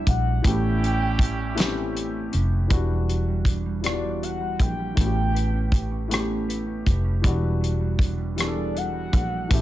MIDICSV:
0, 0, Header, 1, 7, 480
1, 0, Start_track
1, 0, Tempo, 754717
1, 284, Time_signature, 6, 3, 24, 8
1, 6115, End_track
2, 0, Start_track
2, 0, Title_t, "Soft synth lead"
2, 0, Program_c, 0, 80
2, 50, Note_on_c, 0, 78, 104
2, 283, Note_on_c, 0, 79, 117
2, 292, Note_off_c, 0, 78, 0
2, 1244, Note_off_c, 0, 79, 0
2, 2447, Note_on_c, 0, 74, 85
2, 2691, Note_on_c, 0, 78, 83
2, 2701, Note_off_c, 0, 74, 0
2, 2935, Note_on_c, 0, 79, 92
2, 2945, Note_off_c, 0, 78, 0
2, 3170, Note_off_c, 0, 79, 0
2, 3175, Note_on_c, 0, 79, 111
2, 3865, Note_off_c, 0, 79, 0
2, 5341, Note_on_c, 0, 74, 88
2, 5579, Note_on_c, 0, 78, 109
2, 5589, Note_off_c, 0, 74, 0
2, 6060, Note_on_c, 0, 76, 115
2, 6069, Note_off_c, 0, 78, 0
2, 6115, Note_off_c, 0, 76, 0
2, 6115, End_track
3, 0, Start_track
3, 0, Title_t, "Horn section"
3, 0, Program_c, 1, 61
3, 286, Note_on_c, 1, 61, 80
3, 286, Note_on_c, 1, 64, 80
3, 287, Note_on_c, 1, 55, 74
3, 287, Note_on_c, 1, 67, 80
3, 1461, Note_off_c, 1, 61, 0
3, 1461, Note_off_c, 1, 64, 0
3, 1462, Note_off_c, 1, 55, 0
3, 1462, Note_off_c, 1, 67, 0
3, 6115, End_track
4, 0, Start_track
4, 0, Title_t, "Clean electric guitar"
4, 0, Program_c, 2, 27
4, 0, Note_on_c, 2, 52, 82
4, 0, Note_on_c, 2, 62, 66
4, 0, Note_on_c, 2, 67, 63
4, 38, Note_on_c, 2, 55, 60
4, 283, Note_off_c, 2, 55, 0
4, 285, Note_on_c, 2, 57, 83
4, 304, Note_off_c, 2, 67, 0
4, 330, Note_off_c, 2, 62, 0
4, 527, Note_on_c, 2, 61, 62
4, 762, Note_on_c, 2, 67, 58
4, 996, Note_off_c, 2, 61, 0
4, 1003, Note_on_c, 2, 61, 58
4, 1059, Note_off_c, 2, 52, 0
4, 1234, Note_off_c, 2, 67, 0
4, 1236, Note_on_c, 2, 67, 59
4, 1469, Note_off_c, 2, 61, 0
4, 1476, Note_on_c, 2, 61, 60
4, 1723, Note_on_c, 2, 52, 73
4, 1725, Note_off_c, 2, 57, 0
4, 1768, Note_off_c, 2, 61, 0
4, 1838, Note_on_c, 2, 55, 51
4, 1957, Note_off_c, 2, 67, 0
4, 1960, Note_on_c, 2, 66, 53
4, 2080, Note_off_c, 2, 55, 0
4, 2083, Note_on_c, 2, 55, 54
4, 2202, Note_on_c, 2, 62, 53
4, 2324, Note_off_c, 2, 55, 0
4, 2326, Note_on_c, 2, 55, 57
4, 2445, Note_off_c, 2, 52, 0
4, 2448, Note_on_c, 2, 52, 64
4, 2564, Note_off_c, 2, 55, 0
4, 2566, Note_on_c, 2, 55, 57
4, 2680, Note_off_c, 2, 66, 0
4, 2687, Note_on_c, 2, 66, 63
4, 2797, Note_off_c, 2, 55, 0
4, 2800, Note_on_c, 2, 55, 53
4, 2916, Note_off_c, 2, 62, 0
4, 2924, Note_on_c, 2, 62, 50
4, 3046, Note_off_c, 2, 55, 0
4, 3049, Note_on_c, 2, 55, 51
4, 3162, Note_off_c, 2, 55, 0
4, 3165, Note_on_c, 2, 57, 73
4, 3212, Note_off_c, 2, 62, 0
4, 3214, Note_off_c, 2, 66, 0
4, 3280, Note_on_c, 2, 61, 56
4, 3401, Note_on_c, 2, 71, 60
4, 3514, Note_off_c, 2, 61, 0
4, 3522, Note_on_c, 2, 61, 58
4, 3649, Note_on_c, 2, 67, 52
4, 3754, Note_off_c, 2, 61, 0
4, 3762, Note_on_c, 2, 61, 55
4, 3876, Note_off_c, 2, 57, 0
4, 3883, Note_on_c, 2, 57, 76
4, 3996, Note_off_c, 2, 61, 0
4, 4004, Note_on_c, 2, 61, 55
4, 4122, Note_off_c, 2, 71, 0
4, 4124, Note_on_c, 2, 71, 62
4, 4229, Note_off_c, 2, 61, 0
4, 4237, Note_on_c, 2, 61, 55
4, 4359, Note_off_c, 2, 67, 0
4, 4361, Note_on_c, 2, 67, 57
4, 4471, Note_off_c, 2, 61, 0
4, 4478, Note_on_c, 2, 61, 58
4, 4591, Note_off_c, 2, 52, 0
4, 4594, Note_on_c, 2, 52, 73
4, 4649, Note_off_c, 2, 61, 0
4, 4652, Note_off_c, 2, 57, 0
4, 4715, Note_on_c, 2, 55, 56
4, 4837, Note_off_c, 2, 67, 0
4, 4840, Note_on_c, 2, 66, 61
4, 4959, Note_off_c, 2, 55, 0
4, 4961, Note_on_c, 2, 55, 56
4, 5081, Note_on_c, 2, 62, 59
4, 5198, Note_off_c, 2, 55, 0
4, 5200, Note_on_c, 2, 55, 63
4, 5316, Note_off_c, 2, 52, 0
4, 5319, Note_on_c, 2, 52, 70
4, 5433, Note_off_c, 2, 55, 0
4, 5436, Note_on_c, 2, 55, 60
4, 5554, Note_off_c, 2, 66, 0
4, 5562, Note_on_c, 2, 66, 67
4, 5675, Note_off_c, 2, 55, 0
4, 5678, Note_on_c, 2, 55, 54
4, 5791, Note_off_c, 2, 62, 0
4, 5798, Note_on_c, 2, 62, 59
4, 5913, Note_off_c, 2, 55, 0
4, 5915, Note_on_c, 2, 55, 54
4, 6039, Note_off_c, 2, 55, 0
4, 6042, Note_on_c, 2, 57, 79
4, 6061, Note_off_c, 2, 71, 0
4, 6089, Note_off_c, 2, 62, 0
4, 6091, Note_off_c, 2, 66, 0
4, 6115, Note_off_c, 2, 52, 0
4, 6115, Note_off_c, 2, 57, 0
4, 6115, End_track
5, 0, Start_track
5, 0, Title_t, "Grand piano"
5, 0, Program_c, 3, 0
5, 0, Control_c, 3, 64, 127
5, 0, Note_on_c, 3, 52, 72
5, 0, Note_on_c, 3, 55, 65
5, 0, Note_on_c, 3, 59, 62
5, 0, Note_on_c, 3, 62, 64
5, 0, Note_on_c, 3, 66, 82
5, 0, Note_on_c, 3, 67, 77
5, 96, Note_off_c, 3, 52, 0
5, 99, Note_off_c, 3, 55, 0
5, 104, Note_off_c, 3, 59, 0
5, 109, Note_off_c, 3, 62, 0
5, 113, Note_off_c, 3, 67, 0
5, 268, Note_on_c, 3, 52, 73
5, 277, Note_on_c, 3, 57, 70
5, 285, Note_on_c, 3, 59, 70
5, 293, Note_off_c, 3, 66, 0
5, 293, Control_c, 3, 64, 0
5, 293, Note_on_c, 3, 61, 68
5, 301, Note_on_c, 3, 67, 80
5, 399, Control_c, 3, 64, 127
5, 813, Note_off_c, 3, 52, 0
5, 818, Note_off_c, 3, 57, 0
5, 821, Note_off_c, 3, 59, 0
5, 825, Note_off_c, 3, 61, 0
5, 830, Note_off_c, 3, 67, 0
5, 985, Note_on_c, 3, 52, 91
5, 991, Note_on_c, 3, 57, 78
5, 1000, Note_on_c, 3, 59, 79
5, 1009, Note_on_c, 3, 60, 63
5, 1017, Note_on_c, 3, 67, 96
5, 1048, Note_off_c, 3, 60, 0
5, 1049, Note_on_c, 3, 61, 74
5, 1532, Note_off_c, 3, 52, 0
5, 1535, Note_off_c, 3, 57, 0
5, 1539, Note_off_c, 3, 59, 0
5, 1548, Note_off_c, 3, 67, 0
5, 1564, Note_off_c, 3, 61, 0
5, 1700, Note_on_c, 3, 52, 75
5, 1709, Note_on_c, 3, 55, 70
5, 1717, Note_on_c, 3, 59, 64
5, 1726, Note_on_c, 3, 62, 70
5, 1733, Control_c, 3, 64, 0
5, 1734, Note_on_c, 3, 66, 75
5, 1831, Control_c, 3, 64, 127
5, 2249, Note_off_c, 3, 52, 0
5, 2254, Note_off_c, 3, 55, 0
5, 2257, Note_off_c, 3, 59, 0
5, 2262, Note_off_c, 3, 62, 0
5, 2266, Note_off_c, 3, 66, 0
5, 2426, Note_on_c, 3, 52, 61
5, 2434, Note_on_c, 3, 55, 61
5, 2442, Note_on_c, 3, 59, 53
5, 2449, Note_on_c, 3, 62, 57
5, 2459, Note_on_c, 3, 65, 54
5, 2493, Note_off_c, 3, 65, 0
5, 2500, Note_on_c, 3, 66, 61
5, 2972, Note_off_c, 3, 52, 0
5, 2976, Note_off_c, 3, 55, 0
5, 2980, Note_off_c, 3, 59, 0
5, 2984, Note_off_c, 3, 62, 0
5, 3009, Note_off_c, 3, 66, 0
5, 3143, Note_on_c, 3, 52, 59
5, 3151, Note_on_c, 3, 57, 60
5, 3161, Note_on_c, 3, 59, 61
5, 3168, Note_on_c, 3, 61, 58
5, 3174, Control_c, 3, 64, 0
5, 3175, Note_on_c, 3, 66, 55
5, 3211, Note_off_c, 3, 66, 0
5, 3219, Note_on_c, 3, 67, 62
5, 3271, Control_c, 3, 64, 127
5, 3691, Note_off_c, 3, 52, 0
5, 3695, Note_off_c, 3, 57, 0
5, 3699, Note_off_c, 3, 59, 0
5, 3703, Note_off_c, 3, 61, 0
5, 3728, Note_off_c, 3, 67, 0
5, 3866, Note_on_c, 3, 52, 74
5, 3874, Note_on_c, 3, 57, 67
5, 3882, Note_on_c, 3, 59, 69
5, 3892, Note_on_c, 3, 61, 64
5, 3898, Note_on_c, 3, 67, 86
5, 4412, Note_off_c, 3, 52, 0
5, 4416, Note_off_c, 3, 57, 0
5, 4420, Note_off_c, 3, 59, 0
5, 4425, Note_off_c, 3, 61, 0
5, 4428, Note_off_c, 3, 67, 0
5, 4589, Note_on_c, 3, 52, 74
5, 4598, Note_on_c, 3, 55, 72
5, 4606, Note_on_c, 3, 59, 73
5, 4612, Control_c, 3, 64, 0
5, 4613, Note_on_c, 3, 62, 73
5, 4623, Note_on_c, 3, 66, 79
5, 4738, Control_c, 3, 64, 127
5, 5134, Note_off_c, 3, 52, 0
5, 5138, Note_off_c, 3, 55, 0
5, 5142, Note_off_c, 3, 59, 0
5, 5146, Note_off_c, 3, 62, 0
5, 5151, Note_off_c, 3, 66, 0
5, 5315, Note_on_c, 3, 52, 62
5, 5321, Note_on_c, 3, 55, 64
5, 5331, Note_on_c, 3, 59, 61
5, 5338, Note_on_c, 3, 62, 59
5, 5347, Note_on_c, 3, 68, 59
5, 5377, Note_off_c, 3, 68, 0
5, 5389, Note_on_c, 3, 69, 72
5, 5857, Note_off_c, 3, 52, 0
5, 5860, Note_off_c, 3, 55, 0
5, 5865, Note_off_c, 3, 59, 0
5, 5868, Note_off_c, 3, 62, 0
5, 5894, Note_off_c, 3, 69, 0
5, 6031, Note_on_c, 3, 52, 67
5, 6037, Note_on_c, 3, 57, 63
5, 6046, Note_on_c, 3, 59, 57
5, 6053, Control_c, 3, 64, 0
5, 6053, Note_on_c, 3, 61, 57
5, 6061, Note_on_c, 3, 67, 81
5, 6115, Note_off_c, 3, 52, 0
5, 6115, Note_off_c, 3, 57, 0
5, 6115, Note_off_c, 3, 59, 0
5, 6115, Note_off_c, 3, 61, 0
5, 6115, Note_off_c, 3, 67, 0
5, 6115, End_track
6, 0, Start_track
6, 0, Title_t, "Fingered electric bass"
6, 0, Program_c, 4, 33
6, 50, Note_on_c, 4, 34, 83
6, 263, Note_off_c, 4, 34, 0
6, 286, Note_on_c, 4, 33, 114
6, 1460, Note_off_c, 4, 33, 0
6, 1488, Note_on_c, 4, 29, 94
6, 1703, Note_off_c, 4, 29, 0
6, 1727, Note_on_c, 4, 28, 100
6, 2930, Note_off_c, 4, 28, 0
6, 2930, Note_on_c, 4, 34, 79
6, 3144, Note_off_c, 4, 34, 0
6, 3167, Note_on_c, 4, 33, 109
6, 4340, Note_off_c, 4, 33, 0
6, 4371, Note_on_c, 4, 29, 76
6, 4584, Note_off_c, 4, 29, 0
6, 4612, Note_on_c, 4, 28, 107
6, 5813, Note_off_c, 4, 28, 0
6, 5813, Note_on_c, 4, 34, 83
6, 6025, Note_off_c, 4, 34, 0
6, 6054, Note_on_c, 4, 33, 107
6, 6115, Note_off_c, 4, 33, 0
6, 6115, End_track
7, 0, Start_track
7, 0, Title_t, "Drums"
7, 44, Note_on_c, 9, 36, 82
7, 44, Note_on_c, 9, 42, 44
7, 107, Note_off_c, 9, 36, 0
7, 108, Note_off_c, 9, 42, 0
7, 283, Note_on_c, 9, 36, 108
7, 287, Note_on_c, 9, 42, 84
7, 346, Note_off_c, 9, 36, 0
7, 350, Note_off_c, 9, 42, 0
7, 534, Note_on_c, 9, 42, 42
7, 598, Note_off_c, 9, 42, 0
7, 757, Note_on_c, 9, 36, 93
7, 771, Note_on_c, 9, 42, 56
7, 820, Note_off_c, 9, 36, 0
7, 834, Note_off_c, 9, 42, 0
7, 1002, Note_on_c, 9, 42, 72
7, 1019, Note_on_c, 9, 38, 98
7, 1066, Note_off_c, 9, 42, 0
7, 1082, Note_off_c, 9, 38, 0
7, 1250, Note_on_c, 9, 42, 47
7, 1314, Note_off_c, 9, 42, 0
7, 1481, Note_on_c, 9, 42, 43
7, 1545, Note_off_c, 9, 42, 0
7, 1720, Note_on_c, 9, 36, 105
7, 1722, Note_on_c, 9, 42, 65
7, 1784, Note_off_c, 9, 36, 0
7, 1785, Note_off_c, 9, 42, 0
7, 1968, Note_on_c, 9, 42, 39
7, 2032, Note_off_c, 9, 42, 0
7, 2194, Note_on_c, 9, 36, 78
7, 2203, Note_on_c, 9, 42, 49
7, 2258, Note_off_c, 9, 36, 0
7, 2267, Note_off_c, 9, 42, 0
7, 2441, Note_on_c, 9, 42, 58
7, 2458, Note_on_c, 9, 37, 87
7, 2505, Note_off_c, 9, 42, 0
7, 2521, Note_off_c, 9, 37, 0
7, 2691, Note_on_c, 9, 42, 42
7, 2755, Note_off_c, 9, 42, 0
7, 2923, Note_on_c, 9, 36, 75
7, 2927, Note_on_c, 9, 42, 43
7, 2986, Note_off_c, 9, 36, 0
7, 2990, Note_off_c, 9, 42, 0
7, 3161, Note_on_c, 9, 36, 99
7, 3163, Note_on_c, 9, 42, 75
7, 3225, Note_off_c, 9, 36, 0
7, 3227, Note_off_c, 9, 42, 0
7, 3412, Note_on_c, 9, 42, 39
7, 3475, Note_off_c, 9, 42, 0
7, 3637, Note_on_c, 9, 36, 86
7, 3649, Note_on_c, 9, 42, 48
7, 3701, Note_off_c, 9, 36, 0
7, 3713, Note_off_c, 9, 42, 0
7, 3888, Note_on_c, 9, 42, 64
7, 3904, Note_on_c, 9, 37, 89
7, 3952, Note_off_c, 9, 42, 0
7, 3968, Note_off_c, 9, 37, 0
7, 4134, Note_on_c, 9, 42, 41
7, 4198, Note_off_c, 9, 42, 0
7, 4366, Note_on_c, 9, 36, 75
7, 4372, Note_on_c, 9, 42, 42
7, 4430, Note_off_c, 9, 36, 0
7, 4435, Note_off_c, 9, 42, 0
7, 4605, Note_on_c, 9, 36, 108
7, 4609, Note_on_c, 9, 42, 71
7, 4669, Note_off_c, 9, 36, 0
7, 4672, Note_off_c, 9, 42, 0
7, 4858, Note_on_c, 9, 42, 41
7, 4922, Note_off_c, 9, 42, 0
7, 5081, Note_on_c, 9, 36, 88
7, 5096, Note_on_c, 9, 42, 54
7, 5144, Note_off_c, 9, 36, 0
7, 5160, Note_off_c, 9, 42, 0
7, 5329, Note_on_c, 9, 42, 66
7, 5345, Note_on_c, 9, 37, 85
7, 5393, Note_off_c, 9, 42, 0
7, 5409, Note_off_c, 9, 37, 0
7, 5575, Note_on_c, 9, 42, 40
7, 5639, Note_off_c, 9, 42, 0
7, 5807, Note_on_c, 9, 36, 80
7, 5810, Note_on_c, 9, 42, 40
7, 5871, Note_off_c, 9, 36, 0
7, 5874, Note_off_c, 9, 42, 0
7, 6046, Note_on_c, 9, 36, 103
7, 6048, Note_on_c, 9, 42, 78
7, 6110, Note_off_c, 9, 36, 0
7, 6112, Note_off_c, 9, 42, 0
7, 6115, End_track
0, 0, End_of_file